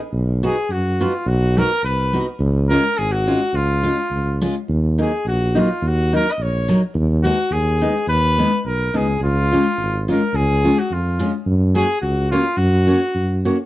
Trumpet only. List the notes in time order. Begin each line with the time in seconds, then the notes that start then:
0.45 G#4
0.72 F#4
1.02 F4
1.28 F#4
1.58 A#4
1.85 B4
2.70 A#4
2.98 G#4
3.12 F#4
3.55 F4
5.01 G#4
5.28 F#4
5.59 F4
5.87 F#4
6.16 A#4
6.31 D#5
6.42 C#5
7.23 F#4
7.52 G#4
8.09 B4
8.66 A#4
8.96 G#4
9.24 F4
10.11 A#4
10.36 G#4
10.79 F#4
10.93 F4
11.75 G#4
12.01 F#4
12.31 F4
12.57 F#4